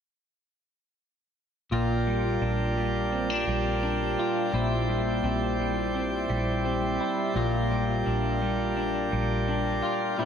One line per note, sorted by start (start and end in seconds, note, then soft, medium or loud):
1.71 2.39 A#1 medium
1.71 4.52 A#2 medium
1.71 4.18 F4 soft
1.71 4.52 F4 soft
1.71 4.52 A#4 soft
1.71 10.25 D5 soft
1.71 10.25 G5 medium
2.07 2.77 G3 soft
2.42 3.44 A#1 medium
2.42 3.12 D4 soft
2.77 3.48 G3 soft
3.12 3.30 C4 soft
3.30 3.82 D4 soft
3.47 4.15 A#1 medium
3.47 4.88 G3 soft
3.83 5.23 D4 medium
4.19 4.54 F4 medium
4.53 5.21 A#1 medium
4.53 7.34 A#2 medium
4.53 7.33 E4 medium
4.53 6.99 E4 medium
4.53 7.34 C5 soft
4.89 5.60 G3 soft
5.24 6.26 A#1 medium
5.24 5.94 C4 soft
5.60 6.29 G3 soft
5.95 6.64 C4 soft
6.30 6.97 A#1 medium
6.30 7.71 G3 soft
6.65 7.43 C4 medium
7.00 7.36 E4 medium
7.36 8.03 A#1 medium
7.36 10.17 A#2 medium
7.36 9.81 F4 medium
7.36 10.16 F4 medium
7.36 10.16 A#4 soft
7.71 8.41 G3 soft
8.06 9.09 A#1 medium
8.06 8.76 D4 medium
8.42 9.12 G3 medium
8.77 9.48 D4 soft
9.12 9.80 A#1 medium
9.12 10.25 G3 soft
9.48 10.25 D4 medium
9.82 10.18 F4 medium
10.18 10.25 A#2 medium
10.18 10.25 A#3 medium
10.18 10.25 E4 soft
10.18 10.25 E4 medium
10.18 10.25 C5 medium